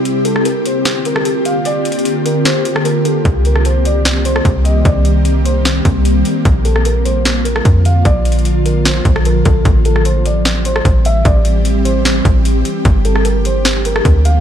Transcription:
Already playing: C4 G4
0.05 D3 A#3 F4, closed hi-hat
0.25 A4, closed hi-hat
0.36 cross-stick
0.45 A#4, closed hi-hat
0.66 C5, closed hi-hat
0.85 snare, closed hi-hat
1.05 A#4, closed hi-hat
1.16 cross-stick
1.25 closed hi-hat
1.45 F5, closed hi-hat
1.65 D5, closed hi-hat
1.85 closed hi-hat
1.92 closed hi-hat
1.99 closed hi-hat
2.05 closed hi-hat
2.26 A#4, closed hi-hat
2.45 C5, snare, closed hi-hat
2.65 closed hi-hat
2.76 cross-stick
2.85 A#4, closed hi-hat
3.05 A4, closed hi-hat
3.25 C2 D#3 G3 C4, kick, closed hi-hat
3.45 A#4, closed hi-hat
3.56 cross-stick
3.65 C5, closed hi-hat
3.85 D5, closed hi-hat
4.05 snare, closed hi-hat
4.25 C5, closed hi-hat
4.36 cross-stick
4.45 C2, kick, closed hi-hat
4.64 D#5, closed hi-hat
4.85 C2 D5, kick, closed hi-hat
5.05 closed hi-hat
5.25 closed hi-hat
5.45 C5, closed hi-hat
5.65 snare, closed hi-hat
5.85 C2, kick, closed hi-hat
6.05 closed hi-hat
6.25 closed hi-hat
6.45 A#1 D3 F3 F4, kick, closed hi-hat
6.65 A4, closed hi-hat
6.76 cross-stick
6.85 A#4, closed hi-hat
7.05 C5, closed hi-hat
7.25 snare, closed hi-hat
7.45 A#4, closed hi-hat
7.56 cross-stick
7.65 F2, kick, closed hi-hat
7.85 F5, closed hi-hat
8.05 A#1 D5, kick, closed hi-hat
8.25 closed hi-hat
8.32 closed hi-hat
8.39 closed hi-hat
8.45 closed hi-hat
8.65 A#4, closed hi-hat
8.85 C5, snare, closed hi-hat
9.05 A#1, kick, closed hi-hat
9.16 cross-stick
9.25 A#4, closed hi-hat
9.45 A#1 A4, kick, closed hi-hat
9.65 A1 E3 G3 C4 G4, kick, closed hi-hat
9.85 A4, closed hi-hat
9.96 cross-stick
10.05 C5, closed hi-hat
10.25 D5, closed hi-hat
10.45 snare, closed hi-hat
10.65 C5, closed hi-hat
10.76 cross-stick
10.85 A1, kick, closed hi-hat
11.05 E5, closed hi-hat
11.25 A1 D5, kick, closed hi-hat
11.45 closed hi-hat
11.65 closed hi-hat
11.85 C5, closed hi-hat
12.05 snare, closed hi-hat
12.25 A1, kick, closed hi-hat
12.45 closed hi-hat
12.65 closed hi-hat
12.85 G1 F3 A#3 D4, kick, closed hi-hat
13.05 A4, closed hi-hat
13.16 cross-stick
13.25 A#4, closed hi-hat
13.45 C5, closed hi-hat
13.65 snare, closed hi-hat
13.85 A#4, closed hi-hat
13.96 cross-stick
14.05 D2, kick, closed hi-hat
14.25 F5, closed hi-hat

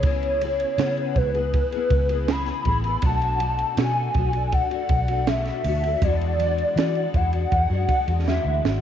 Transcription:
0.03 C#2 C#3 B3 E4 G#4 C#5, kick, ride
0.23 ride
0.41 C#3 B3 E4 G#4, ride
0.60 ride
0.78 C#3 B3 E4 G#4, snare, ride
0.97 ride
1.16 C#2 C#3 B3 E4 B4, kick, ride
1.20 G#4
1.34 B3 E4 G#4, ride
1.54 kick, ride
1.72 B3 E4 G#4, ride
1.90 C#2, kick, ride
2.09 E4 G#4, ride
2.13 B3
2.27 C#3 B3 E4 G#4 B5, snare, ride
2.46 snare, ride
2.64 A1 C#3 B3 E4 G#4, kick, ride
2.84 E4 G#4, ride
2.88 B3
3.01 B1 B2 A3 D4 F#4 A5, kick, ride
3.22 ride
3.39 B2 A3 D4 F#4, ride
3.58 ride
3.77 B2 A3 D4 F#4 G#5, snare, ride
4.14 B1 B2 A3 D4 F#4, kick, ride
4.33 A3 D4 F#4, ride
4.52 F#5, kick, ride
4.70 A3 D4 F#4, ride
4.89 B1, kick, ride
5.08 D4 F#4, ride
5.12 A3
5.27 B2 A3 D4 F#4 E5, snare, ride
5.45 snare, ride
5.64 D2 B2 A3 D4, open hi-hat, ride
5.68 F#4
5.83 A3 D4 F#4, ride
6.02 E2 E3 G#3 D4 F#4 D5, kick, hi-hat pedal, ride
6.21 ride
6.38 E3 G#3 D4, ride
6.42 F#4
6.58 ride
6.76 E3 G#3 D4 F#4 D5, snare, ride
6.95 ride
7.14 E2 E3 G#3 D4 F#4 F#5, kick, ride
7.32 G#3 D4 F#4, ride
7.52 E2, kick, ride
7.69 F#2 G#3 D4 F#4
7.89 kick, ride
8.06 E2 G#3 D4 F#4, ride
8.26 E3 G#3 D4 F#4 E5, snare
8.45 D2
8.63 G#1 E3 G#3 D4 F#4, snare

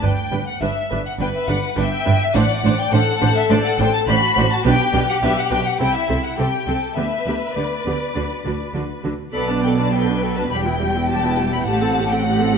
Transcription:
0.03 G1 G2 D4 B4 G5
0.32 G1 G2 D4 B4
0.48 F#5
0.62 G1 G2 D4 B4 E5
0.91 G1 G2 D4 B4
1.07 F#5
1.19 G1 G2 D4 B4 G5
1.36 E5
1.48 G1 G2 D4 B4 F#5
1.77 G1 G2 D4 B4 E5 G5
2.05 G1 G2 D4 B4
2.23 E5
2.35 A1 A2 D4 C5 D5 F#5
2.64 A1 A2 D4 C5
2.79 G5
2.92 A1 A2 D4 A4 C5 F#5
3.21 A1 A2 D4 C5
3.37 E5
3.50 A1 A2 D4 C5 D5
3.66 F#5
3.79 A1 A2 D4 C5 G5
3.94 A5
4.08 A1 A2 D4 F#4 C5 B5
4.37 A1 A2 D4 C5
4.52 A5
4.64 B1 B2 D4 G4 B4 G5
4.93 B1 B2 D4 B4
5.09 F#5
5.23 B1 B2 D4 B4 E5
5.38 F#5
5.51 B1 B2 D4 B4 G5
5.66 F#5
5.80 C2 C3 C4 E4 A4 G5
5.94 E5
6.09 C2 C3 C4 A4
6.24 F#5
6.37 C2 C3 C4 G4 A4 G5
6.67 C2 C3 C4 A4
6.96 D2 D3 B3 G4 B4 E5
7.26 D2 D3 B3 G4
7.55 D2 D3 B3 G4 D5
7.85 D2 D3 B3 G4
8.15 D2 D3 D4 F#4
8.45 D2 D3 D4 F#4
8.75 D2 D3 D4 F#4
9.04 D2 D3 D4 F#4
9.32 B1 B2 B3 A4 D5 B5
9.49 D4 B4 A5
9.62 B3 A4 G5
9.78 D4 B4 A5
9.92 B3 A4 B4 G5
10.07 D4 B4
10.22 B3 A4
10.36 D4 B4 A5
10.49 E1 E2 G3 G4 G5 B5
10.64 B3 E4 G5
10.80 G3 G4
10.95 B3 E4
11.08 G3 G4 A5
11.24 B3 E4
11.38 G3 G4
11.52 B3 E4 B5
11.67 A1 A2 A3 G4 F#5 A5
11.82 C4 A4
11.97 A3 G4
12.10 C4 A4 G5
12.25 A3 G4 F#5
12.40 C4 A4
12.54 A3 G4

